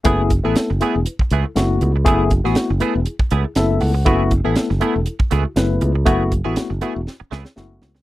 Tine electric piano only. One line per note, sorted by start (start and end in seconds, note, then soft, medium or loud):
0.04 0.30 A3 loud
0.04 0.30 B3 medium
0.04 0.31 E4 medium
0.04 0.31 G#4 loud
0.43 0.69 A3 medium
0.43 0.69 B3 medium
0.43 0.70 E4 medium
0.43 0.70 A4 medium
0.80 0.98 A3 medium
0.80 0.98 B3 medium
0.80 0.98 E4 medium
0.80 0.99 G#4 medium
1.06 1.13 B4 soft
1.44 1.50 E4 soft
1.44 1.50 A4 soft
1.55 1.90 A3 medium
1.55 1.90 B3 medium
1.55 1.91 E4 medium
1.55 1.91 F#4 medium
2.05 2.31 A3 loud
2.05 2.31 B3 medium
2.05 2.31 E4 medium
2.05 2.31 G#4 loud
2.44 2.70 A3 medium
2.44 2.70 B3 medium
2.44 2.70 E4 medium
2.44 2.70 F#4 medium
2.80 2.98 A3 medium
2.80 2.99 B3 medium
2.80 2.99 E4 medium
2.80 2.99 B4 medium
3.06 3.13 E4 soft
3.06 3.13 G#4 soft
3.44 3.50 E4 soft
3.44 3.51 G#4 soft
3.56 3.91 A3 medium
3.56 3.91 B3 medium
3.56 3.91 E4 medium
3.56 3.91 A4 medium
3.56 3.80 E5 medium
3.81 4.05 F#5 medium
4.05 4.31 A3 loud
4.05 4.32 B3 loud
4.05 4.32 E4 medium
4.05 4.32 F#4 loud
4.44 4.70 A3 medium
4.44 4.70 B3 medium
4.44 4.70 E4 medium
4.44 4.71 A4 medium
4.80 4.99 A3 medium
4.80 4.99 B3 medium
4.80 4.99 E4 medium
4.80 4.99 A4 medium
5.05 5.13 E4 soft
5.05 5.13 A4 soft
5.44 5.50 E4 soft
5.44 5.51 F#4 soft
5.56 5.91 A3 medium
5.56 5.91 B3 medium
5.56 5.91 E4 medium
5.56 5.92 B4 medium
6.05 6.31 A3 loud
6.05 6.32 B3 medium
6.05 6.32 E4 loud
6.05 6.32 F#4 loud
6.45 6.70 A3 medium
6.45 6.71 B3 medium
6.45 6.71 E4 medium
6.45 6.71 F#4 medium
6.82 6.99 A3 medium
6.82 7.00 B3 medium
6.82 7.00 E4 medium
6.82 7.00 F#4 medium
7.46 7.51 E4 soft
7.46 7.52 G#4 soft
7.56 7.91 A3 medium
7.56 7.91 B3 medium
7.56 7.92 E4 medium
7.56 7.92 F#4 medium